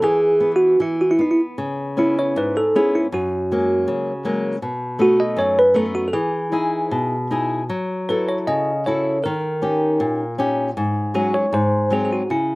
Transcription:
0.02 nylon-string guitar E3, tine electric piano G#4
0.40 nylon-string guitar B3
0.56 tine electric piano F#4
0.80 nylon-string guitar E3, tine electric piano E4
1.01 tine electric piano F#4
1.11 tine electric piano E4
1.19 nylon-string guitar B3, tine electric piano D#4
1.31 tine electric piano E4
1.58 nylon-string guitar C#3
1.97 nylon-string guitar B3 C#4 E4, tine electric piano E4
2.19 tine electric piano C#5
2.36 nylon-string guitar G#2, tine electric piano B4
2.57 tine electric piano A4
2.76 nylon-string guitar B3 C#4 E4, tine electric piano G#4
2.95 tine electric piano E4
3.12 nylon-string guitar F#2, tine electric piano F#4
3.52 nylon-string guitar F#3 G#3 A#3
3.88 nylon-string guitar C#3
4.25 nylon-string guitar F#3 G#3 A#3
4.62 nylon-string guitar B2
4.99 nylon-string guitar A3 B3 D#4, tine electric piano F#4
5.20 tine electric piano D#5
5.37 nylon-string guitar F#2, tine electric piano C#5
5.59 tine electric piano B4
5.74 nylon-string guitar A3 B3 D#4, tine electric piano A4
5.95 tine electric piano F#4
6.08 tine electric piano A4
6.13 nylon-string guitar E3, tine electric piano G#4
6.52 nylon-string guitar D#4 E4 G#4
6.91 nylon-string guitar B2
7.31 nylon-string guitar D#4 E4 G#4
7.69 nylon-string guitar F#3
8.09 nylon-string guitar E4 F#4 A4, tine electric piano B4
8.29 tine electric piano C#5
8.47 nylon-string guitar C#3, tine electric piano D#5
8.86 nylon-string guitar E4 F#4 A4, tine electric piano C#5
9.24 nylon-string guitar D#3, tine electric piano A#4
9.62 nylon-string guitar C#4 D#4 G4
10.00 nylon-string guitar A#2
10.38 nylon-string guitar C#4 D#4 G4
10.77 nylon-string guitar G#2
11.14 nylon-string guitar F#3 G#3 C#4, tine electric piano F#4
11.34 tine electric piano C#5
11.53 nylon-string guitar G#2, tine electric piano C5
11.90 nylon-string guitar F#3 G#3 C4, tine electric piano G#4
12.05 tine electric piano G#4
12.13 tine electric piano F#4
12.30 nylon-string guitar C#3, tine electric piano E4

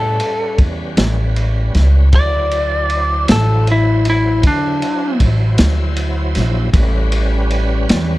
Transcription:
Already playing: upright bass A2, tonewheel organ G3 C#4 B4, lead electric guitar A4
0.20 ride
0.58 upright bass E2, kick, ride
0.97 upright bass A1, snare, ride
1.36 ride
1.75 upright bass C#2, snare, ride
2.12 upright bass D2, tonewheel organ F#3 E4 C5, lead electric guitar D5, kick, ride
2.51 ride
2.90 ride
3.28 upright bass A1, lead electric guitar A4, snare, ride
3.67 ride
3.72 lead electric guitar E4
4.05 ride
4.10 lead electric guitar E4
4.43 upright bass D3, lead electric guitar D4, kick, ride
4.82 ride
5.20 upright bass A1, kick, ride
5.58 upright bass D2, snare, ride
5.96 ride
6.35 upright bass A#1, snare, ride
6.73 upright bass A1, tonewheel organ G3 C#4 B4, kick, ride
7.12 ride
7.50 ride
7.89 upright bass E2, snare, ride

